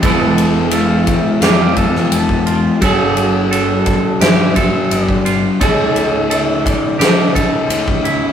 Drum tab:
RD |x-x-x-x-x-x-x-x-|x-x-x-x-x-x-x-x-|x-x-x-x-x-x-x-x-|
SD |--------o--o----|--------o-------|--------o-------|
BD |o-----o---o--o--|o-----o---o--o--|o-----o---o--o--|